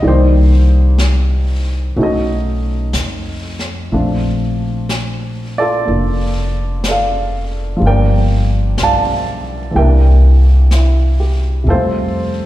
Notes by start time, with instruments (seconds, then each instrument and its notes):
0.02 upright bass C2, grand piano D#3 G3 A#3 D5, brush sweep
0.07 grand piano D#4 G4 C5
0.98 brush sweep, snare, hi-hat pedal
1.96 upright bass B1, grand piano A3 C#4 D#4 F#4, brush sweep
2.01 grand piano F#4 A4 D#5
2.93 upright bass F2, brush sweep, snare, hi-hat pedal
3.59 snare
3.92 upright bass A#1, grand piano F3 A3 C4 D4, brush sweep
4.89 brush sweep, snare, hi-hat pedal
5.58 grand piano F4 A4 D5
5.85 upright bass F1, grand piano A#3 D4 F4, brush sweep
6.84 brush sweep, snare, hi-hat pedal
6.88 grand piano A4 D5 F5
7.77 grand piano F3 G3, brush sweep
7.82 upright bass G1, grand piano A#3
7.86 grand piano D4 A#4 D5 G5
8.78 upright bass B1, brush sweep, snare, hi-hat pedal
8.83 grand piano D5 F5 A5
9.71 grand piano E3, brush sweep
9.75 upright bass C2, grand piano G3 A#3 A#4 E5 G5
9.82 grand piano D4
10.71 grand piano E4, brush sweep, snare, hi-hat pedal
11.20 grand piano G4
11.64 upright bass F2, grand piano C3 G3, brush sweep
11.69 grand piano A3 F4 A4 C5
11.74 grand piano C4